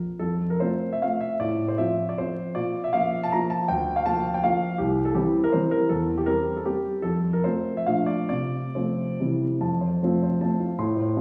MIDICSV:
0, 0, Header, 1, 2, 480
1, 0, Start_track
1, 0, Key_signature, -1, "major"
1, 0, Tempo, 418410
1, 219, Time_signature, 3, 2, 24, 8
1, 1174, Tempo, 389105
1, 2614, Tempo, 372902
1, 8854, Tempo, 419874
1, 10294, Tempo, 452489
1, 11254, Tempo, 414079
1, 11734, Tempo, 400534
1, 12694, Tempo, 374065
1, 13709, End_track
2, 0, Start_track
2, 0, Title_t, "Grand piano"
2, 0, Program_c, 0, 0
2, 223, Note_on_c, 0, 69, 62
2, 231, Note_on_c, 0, 41, 41
2, 416, Control_c, 0, 64, 127
2, 573, Note_off_c, 0, 69, 0
2, 574, Note_on_c, 0, 70, 57
2, 687, Note_off_c, 0, 41, 0
2, 689, Note_on_c, 0, 72, 63
2, 696, Note_off_c, 0, 70, 0
2, 699, Note_on_c, 0, 57, 36
2, 706, Note_on_c, 0, 60, 38
2, 711, Note_on_c, 0, 65, 41
2, 714, Control_c, 0, 64, 0
2, 1055, Note_off_c, 0, 72, 0
2, 1062, Note_on_c, 0, 76, 72
2, 1129, Note_off_c, 0, 57, 0
2, 1133, Note_off_c, 0, 60, 0
2, 1135, Note_off_c, 0, 65, 0
2, 1172, Note_on_c, 0, 77, 60
2, 1175, Note_off_c, 0, 76, 0
2, 1180, Note_on_c, 0, 57, 33
2, 1191, Note_on_c, 0, 60, 33
2, 1196, Note_on_c, 0, 65, 37
2, 1399, Note_on_c, 0, 76, 71
2, 1411, Note_off_c, 0, 77, 0
2, 1598, Note_off_c, 0, 57, 0
2, 1604, Note_off_c, 0, 60, 0
2, 1607, Note_off_c, 0, 65, 0
2, 1635, Note_off_c, 0, 76, 0
2, 1636, Note_on_c, 0, 74, 67
2, 1645, Note_on_c, 0, 45, 45
2, 1843, Control_c, 0, 64, 127
2, 1988, Note_on_c, 0, 72, 63
2, 1990, Note_off_c, 0, 74, 0
2, 2106, Note_off_c, 0, 45, 0
2, 2106, Note_on_c, 0, 76, 74
2, 2112, Note_on_c, 0, 53, 39
2, 2117, Note_off_c, 0, 72, 0
2, 2119, Note_on_c, 0, 60, 36
2, 2126, Note_on_c, 0, 65, 41
2, 2132, Control_c, 0, 64, 0
2, 2488, Note_off_c, 0, 76, 0
2, 2489, Note_on_c, 0, 74, 61
2, 2560, Note_off_c, 0, 53, 0
2, 2564, Note_off_c, 0, 60, 0
2, 2568, Note_off_c, 0, 65, 0
2, 2603, Note_on_c, 0, 72, 67
2, 2610, Note_off_c, 0, 74, 0
2, 2613, Note_on_c, 0, 53, 35
2, 2626, Note_on_c, 0, 60, 35
2, 2627, Note_on_c, 0, 65, 33
2, 3043, Note_off_c, 0, 53, 0
2, 3051, Note_off_c, 0, 60, 0
2, 3051, Note_off_c, 0, 65, 0
2, 3074, Note_on_c, 0, 74, 71
2, 3086, Note_off_c, 0, 72, 0
2, 3087, Note_on_c, 0, 46, 47
2, 3294, Control_c, 0, 64, 127
2, 3443, Note_off_c, 0, 74, 0
2, 3449, Note_on_c, 0, 76, 73
2, 3563, Note_off_c, 0, 46, 0
2, 3564, Note_on_c, 0, 77, 75
2, 3576, Note_on_c, 0, 53, 41
2, 3578, Note_off_c, 0, 76, 0
2, 3581, Note_on_c, 0, 58, 38
2, 3581, Note_on_c, 0, 65, 45
2, 3951, Note_off_c, 0, 77, 0
2, 3958, Note_on_c, 0, 81, 81
2, 4026, Note_off_c, 0, 53, 0
2, 4029, Note_off_c, 0, 58, 0
2, 4029, Note_off_c, 0, 65, 0
2, 4073, Note_on_c, 0, 82, 68
2, 4078, Note_off_c, 0, 81, 0
2, 4084, Note_on_c, 0, 53, 36
2, 4087, Note_on_c, 0, 58, 37
2, 4091, Control_c, 0, 64, 0
2, 4092, Note_on_c, 0, 65, 41
2, 4300, Note_on_c, 0, 81, 81
2, 4306, Note_off_c, 0, 82, 0
2, 4493, Note_off_c, 0, 53, 0
2, 4495, Note_off_c, 0, 58, 0
2, 4498, Note_off_c, 0, 65, 0
2, 4531, Note_off_c, 0, 81, 0
2, 4535, Note_on_c, 0, 79, 81
2, 4545, Note_on_c, 0, 38, 50
2, 4772, Control_c, 0, 64, 127
2, 4890, Note_off_c, 0, 79, 0
2, 4893, Note_on_c, 0, 77, 72
2, 5006, Note_off_c, 0, 38, 0
2, 5016, Note_on_c, 0, 81, 85
2, 5017, Note_off_c, 0, 77, 0
2, 5023, Note_on_c, 0, 58, 41
2, 5026, Note_on_c, 0, 53, 44
2, 5036, Note_on_c, 0, 65, 44
2, 5384, Note_on_c, 0, 79, 69
2, 5390, Note_off_c, 0, 81, 0
2, 5464, Note_off_c, 0, 58, 0
2, 5466, Note_off_c, 0, 53, 0
2, 5471, Note_off_c, 0, 65, 0
2, 5505, Note_on_c, 0, 77, 74
2, 5507, Note_off_c, 0, 79, 0
2, 5512, Note_on_c, 0, 53, 34
2, 5522, Note_on_c, 0, 58, 38
2, 5525, Control_c, 0, 64, 0
2, 5528, Note_on_c, 0, 65, 41
2, 5923, Note_off_c, 0, 53, 0
2, 5928, Note_off_c, 0, 58, 0
2, 5931, Note_off_c, 0, 65, 0
2, 5948, Note_on_c, 0, 67, 72
2, 5960, Note_on_c, 0, 36, 53
2, 5964, Note_off_c, 0, 77, 0
2, 6170, Control_c, 0, 64, 127
2, 6295, Note_on_c, 0, 69, 65
2, 6297, Note_off_c, 0, 67, 0
2, 6409, Note_off_c, 0, 36, 0
2, 6417, Note_on_c, 0, 67, 67
2, 6419, Note_on_c, 0, 52, 43
2, 6421, Note_off_c, 0, 69, 0
2, 6427, Note_on_c, 0, 55, 44
2, 6439, Control_c, 0, 64, 0
2, 6439, Note_on_c, 0, 60, 51
2, 6789, Note_off_c, 0, 67, 0
2, 6792, Note_on_c, 0, 70, 77
2, 6862, Note_off_c, 0, 52, 0
2, 6867, Note_off_c, 0, 55, 0
2, 6874, Note_off_c, 0, 60, 0
2, 6903, Note_on_c, 0, 72, 63
2, 6915, Note_off_c, 0, 70, 0
2, 6921, Note_on_c, 0, 52, 38
2, 6929, Note_on_c, 0, 55, 35
2, 6930, Note_on_c, 0, 60, 39
2, 7146, Note_on_c, 0, 70, 72
2, 7149, Note_off_c, 0, 72, 0
2, 7343, Note_off_c, 0, 52, 0
2, 7347, Note_off_c, 0, 55, 0
2, 7348, Note_off_c, 0, 60, 0
2, 7378, Note_on_c, 0, 69, 69
2, 7382, Note_off_c, 0, 70, 0
2, 7389, Note_on_c, 0, 40, 49
2, 7608, Control_c, 0, 64, 127
2, 7738, Note_off_c, 0, 69, 0
2, 7743, Note_on_c, 0, 67, 64
2, 7854, Note_on_c, 0, 70, 75
2, 7855, Note_off_c, 0, 40, 0
2, 7869, Note_off_c, 0, 67, 0
2, 7873, Note_on_c, 0, 55, 41
2, 7874, Note_on_c, 0, 60, 45
2, 7884, Control_c, 0, 64, 0
2, 8242, Note_off_c, 0, 70, 0
2, 8246, Note_on_c, 0, 69, 56
2, 8325, Note_off_c, 0, 55, 0
2, 8325, Note_off_c, 0, 60, 0
2, 8360, Note_on_c, 0, 67, 68
2, 8371, Note_off_c, 0, 69, 0
2, 8374, Note_on_c, 0, 55, 33
2, 8377, Note_on_c, 0, 60, 39
2, 8806, Note_off_c, 0, 55, 0
2, 8807, Note_off_c, 0, 60, 0
2, 8835, Note_on_c, 0, 69, 72
2, 8847, Note_off_c, 0, 67, 0
2, 8848, Note_on_c, 0, 41, 46
2, 9083, Control_c, 0, 64, 127
2, 9188, Note_off_c, 0, 69, 0
2, 9188, Note_on_c, 0, 70, 62
2, 9303, Note_off_c, 0, 41, 0
2, 9313, Note_on_c, 0, 72, 66
2, 9316, Note_off_c, 0, 70, 0
2, 9322, Note_on_c, 0, 53, 37
2, 9328, Note_on_c, 0, 57, 37
2, 9329, Note_on_c, 0, 60, 41
2, 9330, Control_c, 0, 64, 0
2, 9684, Note_off_c, 0, 72, 0
2, 9691, Note_on_c, 0, 76, 71
2, 9761, Note_off_c, 0, 53, 0
2, 9764, Note_off_c, 0, 57, 0
2, 9765, Note_off_c, 0, 60, 0
2, 9799, Note_on_c, 0, 77, 65
2, 9808, Note_off_c, 0, 76, 0
2, 9808, Note_on_c, 0, 53, 30
2, 9810, Note_on_c, 0, 46, 42
2, 9816, Note_on_c, 0, 57, 34
2, 9821, Note_on_c, 0, 62, 32
2, 10027, Note_on_c, 0, 74, 66
2, 10034, Control_c, 0, 64, 127
2, 10040, Note_off_c, 0, 77, 0
2, 10250, Note_off_c, 0, 53, 0
2, 10253, Note_off_c, 0, 57, 0
2, 10256, Note_off_c, 0, 62, 0
2, 10268, Note_off_c, 0, 74, 0
2, 10281, Note_off_c, 0, 46, 0
2, 10285, Note_on_c, 0, 74, 73
2, 10293, Note_on_c, 0, 48, 41
2, 10309, Control_c, 0, 64, 0
2, 10556, Control_c, 0, 64, 127
2, 10772, Note_off_c, 0, 48, 0
2, 10773, Note_on_c, 0, 72, 43
2, 10781, Note_on_c, 0, 53, 36
2, 10782, Note_off_c, 0, 74, 0
2, 10785, Note_on_c, 0, 57, 35
2, 10789, Note_on_c, 0, 60, 39
2, 11209, Note_off_c, 0, 53, 0
2, 11211, Note_off_c, 0, 57, 0
2, 11213, Note_off_c, 0, 60, 0
2, 11247, Note_off_c, 0, 72, 0
2, 11249, Note_on_c, 0, 48, 45
2, 11252, Note_on_c, 0, 52, 31
2, 11255, Note_on_c, 0, 55, 28
2, 11265, Note_on_c, 0, 60, 29
2, 11270, Control_c, 0, 64, 0
2, 11489, Control_c, 0, 64, 127
2, 11686, Note_off_c, 0, 52, 0
2, 11688, Note_off_c, 0, 55, 0
2, 11693, Note_off_c, 0, 60, 0
2, 11717, Note_off_c, 0, 48, 0
2, 11722, Note_on_c, 0, 41, 52
2, 11724, Note_on_c, 0, 81, 49
2, 11751, Control_c, 0, 64, 0
2, 11967, Note_on_c, 0, 72, 50
2, 11976, Control_c, 0, 64, 127
2, 12120, Note_off_c, 0, 81, 0
2, 12203, Note_off_c, 0, 41, 0
2, 12226, Note_on_c, 0, 53, 42
2, 12229, Note_on_c, 0, 57, 43
2, 12229, Note_on_c, 0, 65, 44
2, 12237, Note_on_c, 0, 60, 51
2, 12366, Note_off_c, 0, 72, 0
2, 12469, Note_on_c, 0, 72, 49
2, 12605, Note_off_c, 0, 65, 0
2, 12648, Note_off_c, 0, 53, 0
2, 12650, Note_off_c, 0, 57, 0
2, 12654, Note_off_c, 0, 60, 0
2, 12682, Note_on_c, 0, 53, 39
2, 12685, Note_on_c, 0, 81, 49
2, 12694, Note_on_c, 0, 57, 40
2, 12698, Note_on_c, 0, 60, 43
2, 12707, Control_c, 0, 64, 0
2, 12842, Note_off_c, 0, 72, 0
2, 12922, Note_on_c, 0, 65, 50
2, 13070, Note_off_c, 0, 81, 0
2, 13113, Note_off_c, 0, 53, 0
2, 13120, Note_off_c, 0, 57, 0
2, 13122, Note_off_c, 0, 60, 0
2, 13161, Note_off_c, 0, 65, 0
2, 13167, Note_on_c, 0, 45, 57
2, 13168, Note_on_c, 0, 84, 51
2, 13385, Control_c, 0, 64, 127
2, 13403, Note_on_c, 0, 72, 49
2, 13548, Note_off_c, 0, 84, 0
2, 13635, Note_off_c, 0, 45, 0
2, 13653, Note_on_c, 0, 53, 44
2, 13654, Note_on_c, 0, 65, 42
2, 13655, Note_on_c, 0, 60, 54
2, 13709, Note_off_c, 0, 53, 0
2, 13709, Note_off_c, 0, 60, 0
2, 13709, Note_off_c, 0, 65, 0
2, 13709, Note_off_c, 0, 72, 0
2, 13709, End_track
0, 0, End_of_file